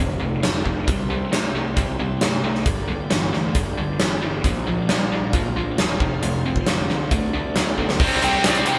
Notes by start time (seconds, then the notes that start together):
0.00 F1 F2 C3
0.20 F1 F2 C3
0.43 F1 F2 D3, snare, closed hi-hat
0.65 F1 F2 D3, kick
0.87 C2 C3 G3 C4 E4 G4 E5, kick, closed hi-hat
1.09 C2 C3 G3
1.31 C2 C3 A3, snare, closed hi-hat
1.54 C2 C3 A3
1.76 C2 C3 G3, kick, closed hi-hat
1.99 C2 C3 G3
2.21 G2 C3 A3, snare, closed hi-hat
2.43 C2 C3 A3
2.55 snare
2.65 G1 G2 D3 B3 D4 G4 D5, kick, closed hi-hat
2.88 G1 G2 D3
3.10 G1 G2 E3, snare, closed hi-hat
3.33 D2 G2 E3, snare
3.55 G1 G2 D3, kick, closed hi-hat
3.77 G1 G2 D3
4.00 G1 G2 E3, snare, closed hi-hat
4.22 G1 G2 E3
4.44 A#1 A#2 F3 A#3 D4 F4 D5, kick, closed hi-hat
4.67 A#1 A#2 F3
4.89 A#1 A#2 G3, snare, closed hi-hat
5.12 A#1 A#2 G3
5.33 A#1 A#2 F3, kick, closed hi-hat
5.56 A#1 A#2 F3
5.78 E1 A#2 G3, snare, closed hi-hat
6.00 F1 F2 C3 A3 C4 F4 C5, kick
6.23 F1 F2 C3, closed hi-hat
6.46 F1 F2 C3
6.56 kick
6.67 F1 F2 D3, snare, closed hi-hat
6.89 C2 F2 D3, snare
7.11 D2 D3 A3 D4 F#4 D5, kick, closed hi-hat
7.33 D2 D3 A3
7.56 D2 D3 B3, snare, closed hi-hat
7.69 A3 B3
7.75 D2 D3 B3 C4 D4, kick
7.80 E4 F4
7.86 G4 A4, snare
7.91 B4 C5
7.97 C2 C3 C4 E4 G4 D5 E5, kick, crash
8.01 G3 C4
8.22 C2 C3 G3 C4 G5, closed hi-hat
8.44 C2 C3 G3 C4 D5, snare, closed hi-hat
8.55 closed hi-hat
8.66 C2 C3 G3 C4 G5, closed hi-hat